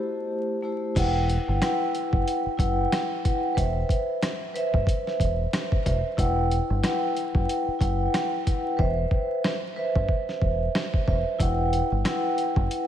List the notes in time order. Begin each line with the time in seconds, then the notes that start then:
Already playing: A3 E4 G4 C5
0.62 A3 E4 G4 C5
0.95 E1 E4 B4 F#5 G5, kick, closed hi-hat, crash
1.29 closed hi-hat
1.48 G1
1.61 E4 B4 F#5 G5, cross-stick, snare, closed hi-hat
1.95 closed hi-hat
2.13 F#1, kick
2.28 closed hi-hat
2.46 muted fingered electric bass stroke
2.58 F#1 E4 B4 F#5 G5, kick, closed hi-hat
2.92 cross-stick, snare, closed hi-hat
3.23 E4 B4 F#5 G5, kick, closed hi-hat
3.55 E1 B4 C5 E5, kick, closed hi-hat
3.89 kick, closed hi-hat
4.23 cross-stick, snare, closed hi-hat
4.54 B4 C5 E5, closed hi-hat
4.74 G1, kick
4.87 kick, closed hi-hat
5.07 snare
5.20 E1, kick, closed hi-hat
5.53 cross-stick, snare, closed hi-hat
5.72 kick
5.84 E1 B4 C5 E5, kick, closed hi-hat
6.17 E1 E4 B4 F#5 G5, kick, closed hi-hat
6.51 closed hi-hat
6.70 G1
6.83 E4 B4 F#5 G5, cross-stick, snare, closed hi-hat
7.16 closed hi-hat
7.35 F#1, kick
7.49 closed hi-hat
7.68 muted fingered electric bass stroke
7.79 F#1 E4 B4 F#5 G5, kick, closed hi-hat
8.14 cross-stick, snare, closed hi-hat
8.45 E4 B4 F#5 G5, kick, closed hi-hat
8.77 E1 B4 C5 E5, kick
9.11 kick
9.44 cross-stick, snare
9.76 B4 C5 E5
9.96 G1, kick
10.09 kick
10.29 snare
10.42 E1, kick
10.75 cross-stick, snare
10.94 kick
11.06 E1 B4 C5 E5, kick
11.39 E1 E4 B4 F#5 G5, kick, closed hi-hat
11.73 closed hi-hat
11.92 G1
12.05 E4 B4 F#5 G5, cross-stick, snare, closed hi-hat
12.38 closed hi-hat
12.56 F#1, kick
12.71 closed hi-hat